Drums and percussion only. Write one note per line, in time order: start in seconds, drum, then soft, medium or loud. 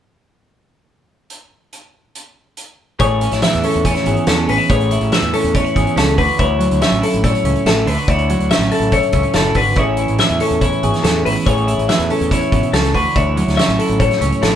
1.30 closed hi-hat soft
1.73 closed hi-hat soft
2.15 closed hi-hat medium
2.57 closed hi-hat soft
2.99 kick medium
2.99 closed hi-hat medium
3.21 closed hi-hat medium
3.31 snare soft
3.31 closed hi-hat soft
3.42 snare loud
3.42 closed hi-hat medium
3.53 snare soft
3.53 closed hi-hat soft
3.63 open hi-hat medium
3.74 closed hi-hat soft
3.85 kick medium
3.85 closed hi-hat medium
3.95 snare soft
3.95 closed hi-hat soft
4.06 closed hi-hat medium
4.17 closed hi-hat soft
4.27 snare loud
4.27 closed hi-hat medium
4.49 open hi-hat medium
4.69 kick medium
4.69 closed hi-hat medium
4.80 closed hi-hat soft
4.91 closed hi-hat medium
5.01 closed hi-hat soft
5.12 snare medium
5.12 closed hi-hat medium
5.22 closed hi-hat soft
5.33 open hi-hat medium
5.44 closed hi-hat soft
5.55 kick medium
5.55 closed hi-hat medium
5.66 closed hi-hat soft
5.76 kick medium
5.76 closed hi-hat medium
5.87 closed hi-hat soft
5.97 snare medium
5.97 closed hi-hat medium
6.08 closed hi-hat soft
6.18 kick medium
6.18 open hi-hat medium
6.39 kick medium
6.39 closed hi-hat medium
6.60 closed hi-hat medium
6.71 closed hi-hat soft
6.81 snare medium
6.81 closed hi-hat medium
6.93 closed hi-hat soft
7.03 open hi-hat medium
7.13 closed hi-hat soft
7.24 kick medium
7.24 closed hi-hat medium
7.35 closed hi-hat soft
7.45 closed hi-hat medium
7.56 closed hi-hat soft
7.66 snare medium
7.66 closed hi-hat medium
7.87 open hi-hat medium
8.08 kick medium
8.08 closed hi-hat medium
8.18 closed hi-hat soft
8.29 closed hi-hat medium
8.40 closed hi-hat soft
8.51 snare medium
8.51 closed hi-hat medium
8.61 snare soft
8.61 closed hi-hat soft
8.71 open hi-hat medium
8.82 closed hi-hat soft
8.92 kick medium
8.92 closed hi-hat medium
9.03 closed hi-hat soft
9.12 kick medium
9.12 closed hi-hat medium
9.23 closed hi-hat soft
9.33 snare loud
9.33 closed hi-hat medium
9.44 closed hi-hat soft
9.54 kick medium
9.54 open hi-hat medium
9.76 kick medium
9.76 closed hi-hat medium
9.97 closed hi-hat medium
10.08 closed hi-hat soft
10.18 snare medium
10.18 closed hi-hat medium
10.29 closed hi-hat soft
10.40 open hi-hat medium
10.51 closed hi-hat soft
10.61 kick medium
10.61 closed hi-hat medium
10.72 closed hi-hat soft
10.83 closed hi-hat medium
10.94 snare soft
10.94 closed hi-hat soft
11.04 snare medium
11.04 closed hi-hat medium
11.26 open hi-hat medium
11.47 kick medium
11.47 closed hi-hat medium
11.58 closed hi-hat soft
11.68 closed hi-hat medium
11.79 closed hi-hat soft
11.89 snare medium
11.89 closed hi-hat medium
12.00 closed hi-hat soft
12.10 open hi-hat medium
12.21 closed hi-hat soft
12.31 kick medium
12.31 closed hi-hat medium
12.42 closed hi-hat soft
12.52 kick medium
12.52 closed hi-hat medium
12.63 closed hi-hat soft
12.73 snare medium
12.73 closed hi-hat medium
12.84 snare soft
12.84 closed hi-hat soft
12.94 kick medium
12.94 open hi-hat medium
13.16 kick medium
13.16 closed hi-hat medium
13.37 closed hi-hat medium
13.48 snare soft
13.48 closed hi-hat soft
13.59 snare loud
13.59 closed hi-hat medium
13.69 closed hi-hat soft
13.79 open hi-hat medium
13.90 closed hi-hat soft
14.00 kick medium
14.00 closed hi-hat medium
14.11 snare soft
14.11 closed hi-hat soft
14.21 closed hi-hat medium
14.32 closed hi-hat soft
14.43 snare medium
14.43 closed hi-hat medium